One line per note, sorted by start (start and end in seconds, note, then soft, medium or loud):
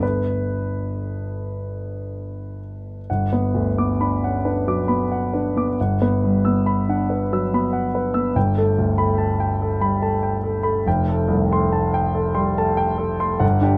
0.00 2.98 G1 soft
0.00 2.99 A3 soft
0.00 3.00 B3 soft
0.00 3.02 D4 soft
0.00 2.59 B4 soft
3.10 5.74 G1 soft
3.10 3.46 F#5 soft
3.33 3.69 B3 soft
3.33 3.69 B4 soft
3.54 3.91 D2 soft
3.78 4.14 B3 soft
3.78 4.14 D6 soft
4.00 4.36 D4 soft
4.00 4.36 B5 soft
4.24 4.45 C#4 soft
4.24 4.58 F#5 soft
4.45 4.80 D4 soft
4.45 4.80 B4 soft
4.68 5.02 F#3 soft
4.68 5.02 D6 soft
4.88 5.24 B3 soft
4.88 5.23 B5 soft
5.12 5.47 F#5 soft
5.33 5.69 D4 soft
5.33 5.69 B4 soft
5.57 5.78 B3 soft
5.57 5.78 D6 soft
5.80 8.34 G1 soft
5.80 6.15 F#5 soft
6.02 6.36 B3 soft
6.02 6.36 B4 soft
6.24 6.58 G2 soft
6.45 6.80 B3 soft
6.45 6.79 E6 soft
6.66 7.01 B5 soft
6.89 7.10 D4 soft
6.89 7.23 F#5 soft
7.10 7.43 B4 soft
7.33 7.65 F#3 soft
7.33 7.65 E6 soft
7.54 7.86 B3 soft
7.54 7.86 B5 soft
7.73 8.06 F#5 soft
7.95 8.28 B4 soft
8.14 8.36 B3 soft
8.14 8.36 E6 soft
8.35 10.82 G1 medium
8.35 8.70 G5 soft
8.58 8.92 A3 soft
8.58 8.92 A4 soft
8.78 9.12 D2 soft
8.98 9.32 A3 soft
8.98 9.32 B5 soft
9.18 9.52 A5 soft
9.40 9.74 G5 soft
9.62 9.95 A4 soft
9.81 10.15 G3 soft
9.81 10.15 B5 soft
10.02 10.36 A3 soft
10.02 10.36 A5 soft
10.23 10.57 G5 soft
10.44 10.78 A4 soft
10.63 10.86 A3 soft
10.63 10.85 B5 soft
10.87 13.38 F1 medium
10.87 11.21 G5 medium
11.09 11.43 A3 soft
11.09 11.43 A4 soft
11.28 11.63 C2 medium
11.52 11.87 A3 soft
11.52 11.86 C6 medium
11.73 12.07 A5 soft
11.94 12.29 G5 medium
12.15 12.50 A4 soft
12.35 12.70 G3 soft
12.35 12.70 C6 medium
12.58 12.92 A3 medium
12.58 12.92 A5 medium
12.77 13.12 G5 medium
12.98 13.33 A4 medium
13.20 13.42 A3 soft
13.20 13.42 C6 medium
13.40 13.78 G1 medium
13.40 13.75 F#5 medium
13.61 13.78 D4 soft
13.61 13.78 G4 medium